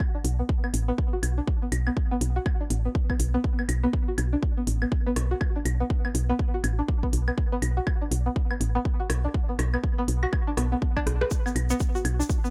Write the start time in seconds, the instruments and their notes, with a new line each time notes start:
0.00 kick, claves
0.15 synth pluck D4
0.24 fm bass B1, open hi-hat
0.39 synth pluck B3
0.49 kick
0.64 synth pluck B3, claves
0.74 fm bass A1, open hi-hat
0.88 synth pluck B3
0.98 kick
1.13 synth pluck F#4
1.23 fm bass B1, open hi-hat, claves
1.38 synth pluck D4
1.48 kick
1.62 synth pluck B3
1.72 fm bass B1, open hi-hat, claves
1.87 synth pluck B3, claves
1.97 kick
2.11 synth pluck B3
2.21 fm bass B1, open hi-hat
2.36 synth pluck F#4
2.46 kick, claves
2.61 synth pluck D4
2.70 fm bass A1, open hi-hat
2.85 synth pluck B3
2.95 kick
3.10 synth pluck B3, kick, claves
3.20 fm bass B1, open hi-hat
3.34 synth pluck B3
3.44 kick
3.59 synth pluck B3, claves
3.69 fm bass B1, open hi-hat, claves
3.84 synth pluck B3
3.93 kick
4.08 synth pluck F#4
4.18 fm bass B1, open hi-hat, claves
4.33 synth pluck D4
4.43 kick
4.57 synth pluck B3
4.67 fm bass A1, open hi-hat
4.82 synth pluck B3, claves
4.92 kick
5.06 synth pluck B3
5.16 fm bass B1, cross-stick, open hi-hat
5.31 synth pluck F#4
5.41 kick, claves
5.56 synth pluck D4
5.65 fm bass B1, open hi-hat, claves
5.80 synth pluck B3
5.90 kick
6.05 synth pluck B3, claves
6.15 fm bass B1, open hi-hat
6.29 synth pluck B3
6.39 kick
6.54 synth pluck F#4
6.64 fm bass A1, open hi-hat, claves
6.79 synth pluck D4
6.88 kick
7.03 synth pluck B3, kick
7.13 fm bass B1, open hi-hat
7.28 synth pluck B3, claves
7.38 kick
7.52 synth pluck B3
7.62 fm bass B1, open hi-hat, claves
7.77 synth pluck F#4
7.87 kick, claves
8.02 synth pluck D4
8.11 fm bass B1, open hi-hat
8.26 synth pluck B3
8.36 kick
8.51 synth pluck B3, claves
8.61 fm bass A1, open hi-hat
8.75 synth pluck B3
8.85 kick
9.00 synth pluck F#4
9.10 fm bass B1, cross-stick, open hi-hat, claves
9.24 synth pluck D4
9.34 kick
9.49 synth pluck B3
9.59 fm bass B1, cross-stick, open hi-hat, claves
9.74 synth pluck B3, claves
9.84 kick
9.98 synth pluck B3
10.08 fm bass B1, open hi-hat
10.23 synth pluck F#4, claves
10.33 kick, claves
10.47 synth pluck D4
10.57 fm bass B1, synth pluck B3, cross-stick, open hi-hat
10.72 synth pluck B3
10.82 kick
10.97 synth pluck D4, kick, claves
11.06 fm bass B1, cross-stick, open hi-hat
11.21 synth pluck B4, cross-stick
11.31 kick, shaker
11.46 synth pluck B3, claves, shaker
11.56 fm bass B1, open hi-hat, claves
11.70 synth pluck B3, shaker
11.80 kick, shaker
11.95 synth pluck F#4, shaker
12.05 fm bass B1, open hi-hat, claves
12.20 synth pluck D4, shaker
12.30 kick, shaker
12.44 synth pluck B3, shaker